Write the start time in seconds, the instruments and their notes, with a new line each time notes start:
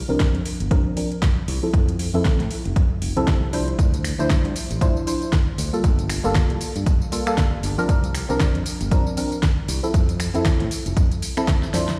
0.08 fingered electric bass C2, synth stab F3 C4 D4 A#4
0.20 kick, snare, closed hi-hat
0.35 fingered electric bass F2, closed hi-hat
0.45 open hi-hat
0.60 fingered electric bass G1, closed hi-hat
0.71 fingered electric bass C2, synth stab F3 C4 D4 A#4, kick, closed hi-hat
0.96 synth stab F3 C4 D4 A#4, open hi-hat
1.12 closed hi-hat
1.22 kick, snare, closed hi-hat
1.48 fingered electric bass C2, open hi-hat
1.62 synth stab F3 C4 E4 A4
1.74 fingered electric bass F2, kick, closed hi-hat
1.89 closed hi-hat
1.99 open hi-hat
2.13 fingered electric bass F2, synth stab F3 C4 E4 A4
2.25 kick, snare, closed hi-hat
2.40 fingered electric bass A2, snare, closed hi-hat
2.51 open hi-hat
2.65 fingered electric bass F1, closed hi-hat
2.76 fingered electric bass F2, kick, closed hi-hat
3.02 fingered electric bass F1, open hi-hat
3.16 fingered electric bass C2, synth stab F3 C4 E4 A4, closed hi-hat
3.27 kick, snare, closed hi-hat
3.52 synth stab F3 D4 E4 C5, open hi-hat
3.68 closed hi-hat
3.79 fingered electric bass D2, kick, closed hi-hat, tambourine
3.94 closed hi-hat, tambourine
4.05 finger snap, open hi-hat, tambourine
4.18 fingered electric bass D2, synth stab F3 D4 E4 C5, tambourine
4.30 finger snap, kick, snare, closed hi-hat, tambourine
4.45 fingered electric bass G2, closed hi-hat
4.56 open hi-hat, tambourine
4.71 fingered electric bass A1, closed hi-hat, tambourine
4.81 fingered electric bass D2, synth stab F3 D4 E4 C5, kick, closed hi-hat, tambourine
4.97 tambourine
5.07 synth stab F3 D4 E4 C5, open hi-hat, tambourine
5.22 closed hi-hat, tambourine
5.33 kick, snare, closed hi-hat, tambourine
5.58 fingered electric bass D2, open hi-hat, tambourine
5.73 synth stab G3 A#3 F4 A4, tambourine
5.84 fingered electric bass G1, kick, closed hi-hat, tambourine
5.99 closed hi-hat, tambourine
6.10 finger snap, open hi-hat, tambourine
6.23 fingered electric bass G1, synth stab G3 A#3 F4 A4, tambourine
6.35 finger snap, kick, snare, closed hi-hat, tambourine
6.50 fingered electric bass C2, closed hi-hat
6.61 open hi-hat, tambourine
6.76 fingered electric bass G2, closed hi-hat, tambourine
6.86 fingered electric bass G1, kick, closed hi-hat, tambourine
7.02 tambourine
7.12 synth stab G3 A#3 F4 A4, open hi-hat, tambourine
7.26 synth stab G3 A#3 F4 A4, finger snap, tambourine
7.38 kick, snare, closed hi-hat, tambourine
7.63 fingered electric bass G1, open hi-hat, tambourine
7.78 synth stab F3 C4 D4 A#4, tambourine
7.89 fingered electric bass C2, kick, closed hi-hat, tambourine
8.04 closed hi-hat, tambourine
8.15 finger snap, open hi-hat, tambourine
8.29 fingered electric bass C2, synth stab F3 C4 D4 A#4, tambourine
8.40 finger snap, kick, snare, closed hi-hat, tambourine
8.55 fingered electric bass F2, closed hi-hat
8.66 open hi-hat, tambourine
8.81 fingered electric bass G1, closed hi-hat, tambourine
8.91 fingered electric bass C2, synth stab F3 C4 D4 A#4, kick, closed hi-hat, tambourine
9.07 tambourine
9.17 synth stab F3 C4 D4 A#4, open hi-hat, tambourine
9.32 closed hi-hat, tambourine
9.43 kick, snare, closed hi-hat, tambourine
9.68 fingered electric bass C2, open hi-hat, tambourine
9.83 synth stab F3 C4 E4 A4, tambourine
9.94 fingered electric bass F2, kick, closed hi-hat, tambourine
10.09 closed hi-hat, tambourine
10.20 finger snap, open hi-hat, tambourine
10.34 fingered electric bass F2, synth stab F3 C4 E4 A4, closed hi-hat, tambourine
10.45 finger snap, kick, snare, closed hi-hat, tambourine
10.60 fingered electric bass A2, snare, closed hi-hat
10.71 open hi-hat, tambourine
10.86 fingered electric bass F1, closed hi-hat, tambourine
10.97 fingered electric bass F2, kick, closed hi-hat, tambourine
11.12 closed hi-hat, tambourine
11.22 open hi-hat, tambourine
11.37 synth stab F3 C4 E4 A4, finger snap, closed hi-hat, tambourine
11.48 kick, snare, closed hi-hat, tambourine
11.63 snare, tambourine
11.73 fingered electric bass F2, synth stab F3 D4 E4 C5, snare, open hi-hat, tambourine
11.89 snare, closed hi-hat, tambourine